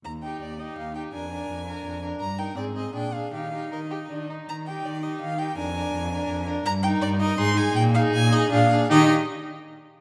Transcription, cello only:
X:1
M:3/4
L:1/8
Q:1/4=163
K:Eb
V:1 name="Cello" clef=bass
E,,2 E,,2 E,,2 | F,,2 F,,2 F,,2 | G,,2 A,,2 B,,2 | E,2 E,2 E,2 |
E,2 E,2 E,2 | F,,2 F,,2 F,,2 | G,,2 G,,2 A,,2 | B,,2 B,,2 B,,2 |
E, z4 z |]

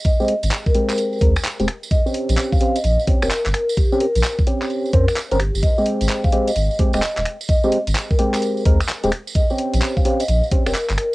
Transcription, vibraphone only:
X:1
M:4/4
L:1/16
Q:"Swing 16ths" 1/4=129
K:Bbdor
V:1 name="Vibraphone"
e e z3 B6 z4 z | e2 z3 f f e e z2 B2 z B2 | G2 B B z6 B2 z2 G G | e2 z3 f f e e z2 e e z3 |
e e z3 B6 z4 z | e2 z3 f f e e z2 B2 z B2 |]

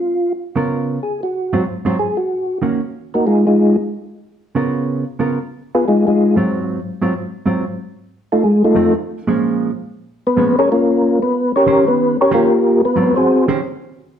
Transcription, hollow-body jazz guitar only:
X:1
M:4/4
L:1/8
Q:"Swing" 1/4=186
K:Db
V:1 name="Hollow-body jazz guitar"
z3 [D,_CFB]3 z2 | z [A,,G,CF] z [A,,G,CF] z4 | [E,B,DG] z6 z | z4 [D,_CFB]3 z |
[D,_CFB] z6 [A,,G,=CF]- | [A,,G,CF]2 z [A,,G,CF] z2 [A,,G,CF] z | z6 [F,,E,=A,C] z | z [B,,F,A,D]3 z4 |
[B,,F,A,D] z6 z | [E,D=Gc]3 z [E,DGc] z3 | [A,,G,CF] z2 [E,D=Gc] z4 |]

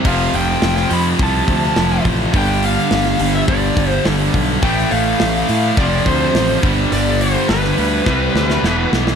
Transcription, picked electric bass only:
X:1
M:4/4
L:1/8
Q:1/4=105
K:Gmix
V:1 name="Picked electric bass" clef=bass
F,,, F,,, F,,, F,, C,, D,, F,,, A,,, | G,,,2 G,,, G,,, G,,, G,,, G,,, B,,, | A,,, A,,, A,,, A,, F,,, D,, A,,, G,,, | G,,,2 G,,, D,, C,, D,, E,,, B,,, |]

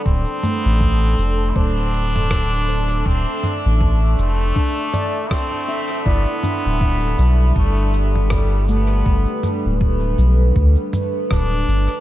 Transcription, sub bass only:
X:1
M:4/4
L:1/16
Q:"Swing 16ths" 1/4=80
K:G
V:1 name="Sub bass" clef=bass
D,,, z2 A,,,3 =F,,,2 D,,,8 | D,,, z2 A,,,3 =F,,,2 z8 | G,,, z2 D,,,3 B,,,2 G,,,8 | G,,, z2 D,,,3 B,,,2 D,, z3 D,,,2 G,,, z |]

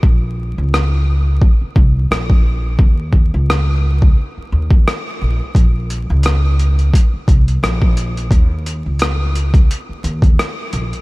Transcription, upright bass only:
X:1
M:4/4
L:1/16
Q:"Swing 16ths" 1/4=87
K:Ebdor
V:1 name="Upright bass" clef=bass
B,,,3 D,,4- D,, z2 C,,2 B,,,4 | E,,3 D,,4- D,, z2 E,,2 z2 B,,, z | B,,,3 D,,4- D,, z2 C,,2 B,,,4 | E,,3 D,,4- D,, z2 E,,2 z2 B,,, z |]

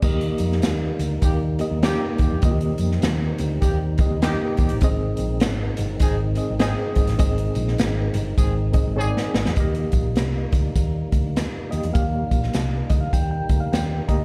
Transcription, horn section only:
X:1
M:4/4
L:1/16
Q:"Swing" 1/4=101
K:Eb
V:1 name="Horn section"
z8 [E,B,G] z3 [E,B,G]4 | z8 [E,B,G] z3 [E,B,G]4 | z8 [E,CA] z3 [E,CA]4 | z8 [E,CA] z3 [E,CA]4 |
z16 | z16 |]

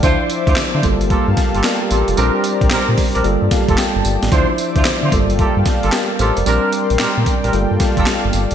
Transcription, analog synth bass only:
X:1
M:4/4
L:1/16
Q:"Swing 16ths" 1/4=112
K:Gdor
V:1 name="Analog synth bass" clef=bass
D,, z2 D,, D, D, G,,,3 G,, z G,,, z2 A,,, F,,, | B,,, z2 B,,, B,, B,, z B,,, G,,, G,, z G,,, z G,,, G,,, A,,, | D,, z2 D,, D, D, G,,,3 G,, z G,,, z2 A,,, F,,, | B,,, z2 B,,, B,, B,, z B,,, G,,, G,, z G,,, z G,,, G,,, A,,, |]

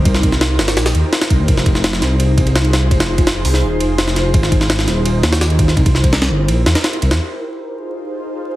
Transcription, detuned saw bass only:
X:1
M:4/4
L:1/16
Q:1/4=168
K:Fm
V:1 name="Detuned saw bass" clef=bass
C,,6 G,,,2 B,,,2 E,, z3 C,, E,, | F,,,6 C,,4 C,,6 | F,,,6 C,,2 E,,,2 F,,,6 | A,,,6 E,,,4 E,,6 |
C,,6 G,,,2 B,,,2 =E,, z3 C,, E,, | z16 |]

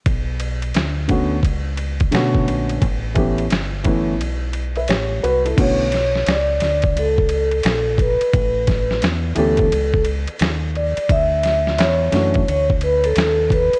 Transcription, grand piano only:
X:1
M:4/4
L:1/16
Q:"Swing 16ths" 1/4=87
K:Bm
V:1 name="Grand piano"
z16 | z8 z3 [Be] [Gc]2 [FB] [EA]- | [EA] z12 z3 | z16 |
z16 |]
V:2 name="Grand piano"
z6 [D,A,B,CF]2 z4 [D,A,B,CF]4 | z2 [E,A,B,CG]2 z2 [E,A,B,CE]2 z8 | [D,A,B,CF]2 z12 z2 | z6 [E,A,B,CG]2 z8 |
z6 [E,A,CDF]2 z8 |]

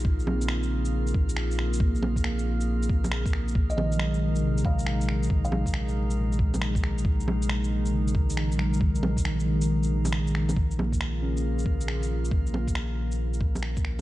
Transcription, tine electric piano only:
X:1
M:4/4
L:1/16
Q:"Swing 16ths" 1/4=137
K:Bbm
V:1 name="Tine electric piano" clef=bass
E2 C12- C2 | B,4 B,12- | B,2 E, G,4- G, C,8- | C,6 z2 B,,8- |
B,,6 z2 D,4 E, G,3- | G,4 E,12- | E,2 B,4 D8- D2- | D4 z12 |]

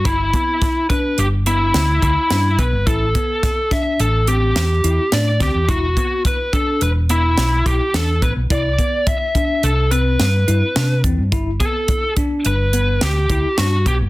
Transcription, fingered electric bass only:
X:1
M:5/4
L:1/16
Q:1/4=106
K:G
V:1 name="Fingered electric bass" clef=bass
G,,,2 z6 G,,,4 D,,2 D,, z G,,2 B,,, G,,, | A,,,2 z6 A,,,4 E,,2 E,, z A,,2 D,, E,, | E,,,2 z6 E,,,4 B,,,2 B,,, z E,,2 A,,, B,,, | C,,2 z6 C,,4 G,,2 G,, z C,2 E,, G,, |
G,,,2 z6 G,,,4 D,,2 D,, z G,,2 B,,, G,,, |]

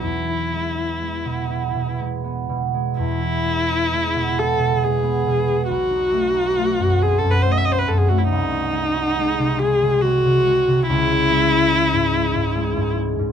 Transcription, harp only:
X:1
M:3/4
L:1/16
Q:1/4=69
K:E
V:1 name="Harp" clef=bass
E,, E G, E G, B,, B, B,, G, B, B,, G, | E,, E G, E G, B,, B, B,, G, B, B,, G, | B,,, D A, D A, F,, =C F,, A, C F,, A, | ^B,,, F G, F G, ^B,, G, B,, G, B,, G, B,, |
C,, E G, E G, G,, G, G,, G, G,, G, G,, |]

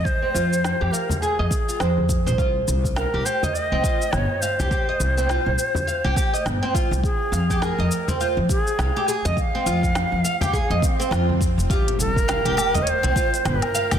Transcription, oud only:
X:1
M:4/4
L:1/16
Q:"Swing 16ths" 1/4=103
K:Fm
V:1 name="Oud"
z C F z2 G f2 A e z F c z2 c | F z3 f G G e z C F z3 f G | G e z C F z3 f G G e z C F z | z2 f G A e z C F z3 f G A e |
z C F z3 f G A e z C F z3 | F z3 f G G e z C F z3 f G |]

